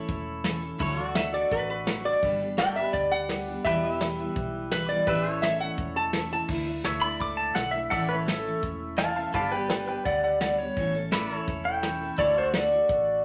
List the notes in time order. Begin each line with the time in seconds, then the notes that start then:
Already playing: A3 C#4 E4 A4 C#5
0.08 E1, kick, closed hi-hat
0.44 E3 A3 C#4 A4, snare, closed hi-hat
0.61 A3 C#4 A4, closed hi-hat
0.78 D2 D3 F#3 A3 D4 E4 F#4 A4, kick, closed hi-hat
0.82 C#5
0.96 A3 D4 F#4, closed hi-hat
1.02 F#4 D5
1.15 F#3 A3 D4 F#4 E5, snare
1.32 A3 D4 F#4 D5, closed hi-hat
1.51 A1 B4, kick, closed hi-hat
1.70 B4
1.85 F#3 A3 D4 F#4, snare, closed hi-hat
2.03 A3 D4 F#4 D5, closed hi-hat
2.22 G1 G2 D3 G3 B3 D4 G4, kick, closed hi-hat
2.41 G3 B3 D4 G4, closed hi-hat
2.58 G3 B3 D4 F#4 G4 A4 D5 G5, snare, closed hi-hat
2.75 G3 B3 D4 G4 E5, closed hi-hat
2.84 B4
2.93 D2 D5, kick, closed hi-hat
3.11 F#5
3.29 G3 B3 D4 G4, snare, closed hi-hat
3.48 G3 B3 D4 G4, closed hi-hat
3.64 E1 E2 B2 E3 G3 B3 E4 G4 B4 E5, kick, closed hi-hat
3.69 D5
3.83 E3 G3 B3 E4, closed hi-hat
3.94 E5
4.00 E3 G3 B3 E4, snare, closed hi-hat
4.18 E3 G3 B3 E4, closed hi-hat
4.36 B1, kick, closed hi-hat
4.71 E3 G3 B3 E4 B4, snare, closed hi-hat
4.88 E3 G3 B3 E4 D5, closed hi-hat
5.07 A1 A2 E3 A3 C#4 E4 G4 B4 E5, kick, closed hi-hat
5.25 A3 C#4 E4, closed hi-hat
5.32 A4 C#5
5.42 E3 A3 C#4 E4 E5, snare, closed hi-hat
5.59 A3 C#4 E4 F#5, closed hi-hat
5.78 E1, kick, closed hi-hat
5.96 A5
6.13 E3 A3 C#4 E4, snare, closed hi-hat
6.30 A3 C#4 E4 A5, closed hi-hat
6.48 D2 D3 A3 D4 E4, kick, crash
6.65 A3 D4 E4, closed hi-hat
6.84 D2 D3 A3 D4 E4 A4 C#5 E5, snare, closed hi-hat
7.01 A3 D4 E4 D5 B5, closed hi-hat
7.20 C#2 D6, kick, closed hi-hat
7.37 A5
7.55 B1 D3 A3 D4 E4 F#5, snare, closed hi-hat
7.71 D4 E4 E5, closed hi-hat
7.76 A3
7.90 A1 A2 E3 A3 C#4 E4 A4 D5 E5 F#5, kick, closed hi-hat
8.09 A3 C#4 E4 B4 C#5, closed hi-hat
8.26 E3 A3 C#4 E4 A4, snare, closed hi-hat
8.45 A3 C#4 E4, closed hi-hat
8.63 E1, kick, closed hi-hat
8.98 E3 A3 C#4 E4 F5 A5, snare, closed hi-hat
9.14 A3 C#4 E4 F5 A5, closed hi-hat
9.32 G1 G2 D3 G3 B3 D4 G4 A4 B4 D5 F5 A5, kick, closed hi-hat
9.50 G3 B3 D4 G4 B4 G5, closed hi-hat
9.59 G4
9.70 G4 B4 G5, snare, closed hi-hat
9.87 G3 B3 D4 G4 B4 G5, closed hi-hat
10.05 D2 D5 F#5, kick, closed hi-hat
10.24 D5 F#5
10.41 G3 B3 D4 G4 D5 F#5, snare, closed hi-hat
10.58 G3 B3 D4 G4 C#5, closed hi-hat
10.76 A1 A2 E3 A3 C#4 A4, kick, closed hi-hat
10.94 A3 C#4 A4, closed hi-hat
11.12 E3 A3 C#4 E4 A4 B4 D5, snare, closed hi-hat
11.30 A3 C#4 A4, closed hi-hat
11.35 A4 C#5
11.48 E1, kick, closed hi-hat
11.65 G5
11.83 E3 A3 C#4 A4, snare, closed hi-hat
12.01 A3 C#4 A4, closed hi-hat
12.18 D2 D3 A3 D4 E4 F#4 A4 C#5 D5, kick, closed hi-hat
12.36 A3 D4 F#4 C5, closed hi-hat
12.40 F#4 D5
12.54 D3 A3 D4 F#4 D5, snare, closed hi-hat
12.71 D4 F#4, closed hi-hat
12.75 A3
12.89 A1, kick, closed hi-hat